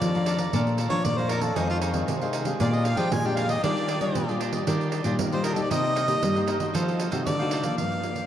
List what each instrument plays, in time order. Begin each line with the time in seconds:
Already playing: cavaquinho D5 F5 A#5, harmonica D5
0.01 nylon-string guitar F2 F3, pandeiro
0.15 nylon-string guitar F3 A3 D4, cavaquinho D5 F5 A#5, pandeiro
0.26 cavaquinho A4 D5 F5 A#5, pandeiro
0.38 cavaquinho D5 F5 A#5, pandeiro
0.53 nylon-string guitar A#2 F3 A3 D4, cavaquinho A4 D5 F5 A#5, pandeiro
0.67 pandeiro
0.78 cavaquinho A4 D5 F5 A#5, pandeiro
0.90 nylon-string guitar F3 A3 D4, cavaquinho A4 D5 F5 A#5, harmonica C#5, pandeiro
1.05 nylon-string guitar F2 A#2, harmonica D5, pandeiro
1.18 nylon-string guitar F3 A3 D4, harmonica C5, cavaquinho D5 F5 A#5, pandeiro
1.29 cavaquinho A4 D5 F5 A#5, harmonica A#4, pandeiro
1.41 harmonica A4, cavaquinho D5 F5 A#5, pandeiro
1.56 nylon-string guitar F2 D#3 G#3 C4, cavaquinho D#4 G#4 C5 F5, harmonica G#4, pandeiro
1.70 harmonica F4, pandeiro
1.81 cavaquinho D#4 G#4 C5 F5, pandeiro
1.93 nylon-string guitar D#3 G#3 C4, cavaquinho G#4 C5 F5, pandeiro
2.08 nylon-string guitar C3, pandeiro
2.21 nylon-string guitar D#3 G#3 C4, cavaquinho G#4 C5 F5, pandeiro
2.33 cavaquinho D#4 G#4 C5 F5, pandeiro
2.45 nylon-string guitar G#3 D4 G4, cavaquinho G#4 C5 F5, pandeiro
2.60 nylon-string guitar A#2, cavaquinho G#4 A#4 D5 F5, harmonica D5, pandeiro
2.73 harmonica D#5, pandeiro
2.85 cavaquinho G#4 A#4 D5 F5, harmonica F5, pandeiro
2.97 nylon-string guitar F3 G#3 D4 G4, cavaquinho G#4 A#4 D5 F5, harmonica G5, pandeiro
3.12 nylon-string guitar F2 A#2, harmonica G#5, pandeiro
3.25 nylon-string guitar G#3 D4 G4, cavaquinho A#4 D5 F5, harmonica G5, pandeiro
3.36 cavaquinho G#4 A#4 D5 F5, harmonica F5, pandeiro
3.48 cavaquinho A#4 D5 F5, harmonica D#5, pandeiro
3.63 nylon-string guitar D#3 G3 D4 F4, cavaquinho D4 G4 D5 D#5, harmonica D5, pandeiro
3.77 pandeiro
3.88 cavaquinho D4 G4 D5 D#5, pandeiro
4.00 nylon-string guitar G3 D4 F4, cavaquinho G4 D5 D#5, pandeiro
4.15 nylon-string guitar A#2, pandeiro
4.28 nylon-string guitar G3 D4 F4, cavaquinho G4 D5 D#5, pandeiro
4.40 cavaquinho D4 G4 D5 D#5, pandeiro
4.53 cavaquinho G4 D5 D#5, pandeiro
4.67 nylon-string guitar D#3 G3 D4 F4, cavaquinho D4 G4 D5 D#5, pandeiro
4.81 pandeiro
4.92 cavaquinho D4 G4 D5 D#5, pandeiro
5.04 nylon-string guitar A#2 G3 D4 F4, cavaquinho D4 G4 D5 D#5, pandeiro
5.19 nylon-string guitar A#2 D#3, pandeiro
5.32 nylon-string guitar G3 D4 F4, cavaquinho G4 D5 D#5, harmonica C5, pandeiro
5.44 cavaquinho D4 G4 D5 D#5, harmonica A#4, pandeiro
5.54 nylon-string guitar A#3 D#4 G4, cavaquinho G4 D5 D#5, harmonica A4, pandeiro
5.62 harmonica D5
5.70 nylon-string guitar C3, cavaquinho D#4 A#4 C5 D#5, harmonica D#5, pandeiro
5.84 pandeiro
5.95 cavaquinho D#4 A#4 C5 D#5, pandeiro
6.07 nylon-string guitar A#3 D#4 G4, cavaquinho A#4 C5 D#5, pandeiro
6.23 nylon-string guitar G2 G3, pandeiro
6.35 nylon-string guitar A#3 D#4 G4, cavaquinho A#4 C5 D#5, pandeiro
6.47 cavaquinho D#4 A#4 C5 D#5, pandeiro
6.59 nylon-string guitar A3 D#4 F#4, cavaquinho A#4 C5 D#5, pandeiro
6.74 nylon-string guitar F3, cavaquinho D#4 A4 C5 F5, pandeiro
6.88 pandeiro
6.99 cavaquinho D#4 A4 C5 F5, pandeiro
7.11 nylon-string guitar C3 A3 D#4 F#4, cavaquinho D#4 A4 C5 F5, pandeiro
7.26 nylon-string guitar C3 D3, harmonica D5, pandeiro
7.39 nylon-string guitar A3 D#4 F#4, cavaquinho A4 C5 F5, pandeiro
7.51 cavaquinho D#4 A4 C5 F5, pandeiro
7.63 nylon-string guitar F3 A#3 D4, cavaquinho A4 C5 F5, pandeiro
7.77 nylon-string guitar G2, harmonica F5, pandeiro
7.92 pandeiro
8.03 nylon-string guitar F3 A#3 D4, pandeiro
8.16 pandeiro